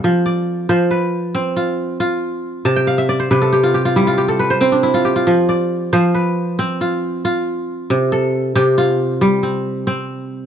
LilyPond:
<<
  \new Staff \with { instrumentName = "Kora" } { \time 12/8 \key f \lydian \tempo 4. = 92 a'8 d''4 c''8 b'4. f'4. r4 | a''16 g''16 f''16 e''16 d''16 c''16 b'16 a'16 g'16 f'16 g'16 f'16 e'16 f'16 g'16 a'16 b'16 c''16 c'16 d'16 e'16 f'16 g'16 f'16~ | f'16 r16 d''4 c''8 b'4. f'4. r4 | r8 a'4 g'8 f'4. c'4. r4 | }
  \new Staff \with { instrumentName = "Kora" } { \clef bass \time 12/8 \key f \lydian f4 r8 f4 r8 c'4 r8 f'4 r8 | c4 r8 c4 r8 g4 r8 c'4 r8 | f4 r8 f4 r8 c'4 r8 f'4 r8 | c4 r8 c4 r8 g4 r8 c'4 r8 | }
>>